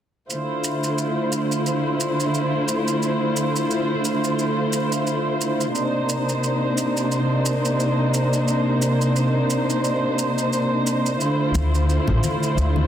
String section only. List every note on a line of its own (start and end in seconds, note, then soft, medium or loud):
0.30 5.71 D3 medium
0.30 5.71 A3 medium
0.30 5.72 E4 medium
0.30 5.71 F4 medium
0.30 5.71 C5 medium
5.76 11.17 C3 medium
5.76 11.17 A#3 medium
5.76 11.17 D4 medium
5.76 11.17 D#4 medium
5.76 12.87 C5 medium
11.20 12.87 D3 medium
11.20 12.87 A3 medium
11.20 12.87 E4 medium
11.20 12.87 F4 medium